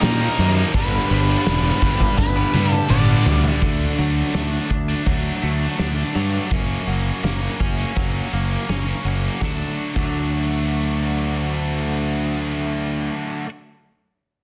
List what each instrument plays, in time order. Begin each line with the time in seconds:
0.01 fingered electric bass A#2, distorted electric guitar D#3 G3 A#3 D#4, lead electric guitar A#4, snare, crash
0.20 distorted electric guitar G3 A#3 D#4
0.37 fingered electric bass F#2, distorted electric guitar D#3 G3 A#3 D#4, crash
0.56 distorted electric guitar G3 A#3 D#4
0.74 fingered electric bass G1, distorted electric guitar G2 D3 G3 B3 D4, lead electric guitar B4, kick, crash
1.10 fingered electric bass G1, crash
1.27 distorted electric guitar G3 B3 D4
1.45 fingered electric bass E1, distorted electric guitar G2 D3 G3 B3 D4, snare, crash
1.81 fingered electric bass G1, distorted electric guitar D3 G3 B3 D4, kick, crash
2.00 muted distorted electric guitar stroke, kick
2.18 fingered electric bass G1, lead electric guitar B4, kick, snare
2.36 distorted electric guitar G3 B3 D4
2.54 fingered electric bass G2, distorted electric guitar G2 D3 G3 B3 D4, high tom
2.72 lead electric guitar A4, muted distorted electric guitar stroke, high tom
2.89 fingered electric bass G1, distorted electric guitar G2 D3 G3 B3 D4, lead electric guitar D5, mid tom
3.07 distorted electric guitar G3 B3 D4
3.24 fingered electric bass D2, distorted electric guitar D3 G3 B3 D4, floor tom
3.43 distorted electric guitar G3 B3 D4, floor tom
3.61 fingered electric bass D2, distorted electric guitar D3 F#3 A3 D4, kick, closed hi-hat
3.98 fingered electric bass D2, distorted electric guitar D3 F#3 A3 D4, closed hi-hat
4.33 fingered electric bass D2, distorted electric guitar D3 F#3 A3 D4, snare, closed hi-hat
4.51 distorted electric guitar F#3 A3 D4
4.70 fingered electric bass D2, clean electric guitar D4, muted distorted electric guitar stroke, kick, closed hi-hat
4.89 distorted electric guitar F#3 A3 D4
5.06 fingered electric bass D2, clean electric guitar F#3, kick, closed hi-hat
5.42 fingered electric bass D2, distorted electric guitar D3 F#3 A3 D4, closed hi-hat
5.60 distorted electric guitar F#3 A3 D4
5.78 fingered electric bass D2, distorted electric guitar D3 F#3 A3 D4, snare, closed hi-hat
5.96 distorted electric guitar F#3 A3 D4
6.14 fingered electric bass G2, distorted electric guitar D3 F#3 A3 D4, closed hi-hat
6.33 distorted electric guitar F#3 A3 D4
6.51 fingered electric bass F#1, distorted electric guitar F#2 C#3 F#3 A#3 C#4, kick, closed hi-hat
6.87 fingered electric bass F#1, distorted electric guitar C#3 F#3 A#3 C#4, closed hi-hat
7.24 fingered electric bass F#1, distorted electric guitar F#2 C#3 F#3 A#3 C#4, snare, closed hi-hat
7.42 distorted electric guitar F#3 A#3 C#4
7.60 fingered electric bass F#1, clean electric guitar C#4, muted distorted electric guitar stroke, kick, closed hi-hat
7.77 distorted electric guitar F#3 A#3 C#4
7.96 fingered electric bass F#1, clean electric guitar F#3, kick, closed hi-hat
8.32 fingered electric bass F#1, distorted electric guitar C#3 F#3 A#3 C#4, closed hi-hat
8.51 distorted electric guitar F#3 A#3 C#4
8.68 fingered electric bass F#1, distorted electric guitar F#2 C#3 F#3 A#3 C#4, snare, closed hi-hat
8.86 distorted electric guitar F#3 A#3 C#4
9.04 fingered electric bass F#1, distorted electric guitar C#3 F#3 A#3 C#4, closed hi-hat
9.23 distorted electric guitar F#3 A#3 C#4
9.41 fingered electric bass D2, distorted electric guitar D3 F#3 A3 D4 F#4, kick, snare
9.95 fingered electric bass D2, distorted electric guitar D3 F#3 A3 D4, kick, crash
9.99 distorted electric guitar F#4